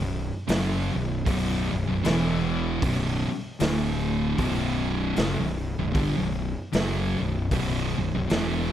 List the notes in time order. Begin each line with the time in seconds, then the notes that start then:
Already playing: B0 B1 F#2
0.48 F#1 F#2 C#3 F#3, snare, open hi-hat
0.93 B0 B1 F#2
1.25 B0 B1 F#2 B2, kick, open hi-hat
1.72 B0 B1 F#2
1.88 B0 B1 F#2
2.05 E1 E2 B2 E3, snare, open hi-hat
2.82 B0 B1 F#2 B2, kick, open hi-hat
3.28 muted fingered electric bass stroke, muted distorted electric guitar stroke
3.60 D1 D2 A2 D3, snare, open hi-hat
4.38 B0 B1 F#2 B2, kick, open hi-hat
5.16 F#1 F#2 C#3, snare, open hi-hat
5.39 B0 B1 F#2
5.78 B0 B1 F#2
5.93 G1 G2 D3, kick, open hi-hat
6.17 B0 B1 F#2
6.72 F#1 F#2 C#3 F#3, snare, open hi-hat
7.19 B0 B1 F#2
7.51 B0 B1 F#2 B2, kick, open hi-hat
7.97 B0 B1 F#2
8.14 B0 B1 F#2
8.29 E1 E2 B2 E3, snare, open hi-hat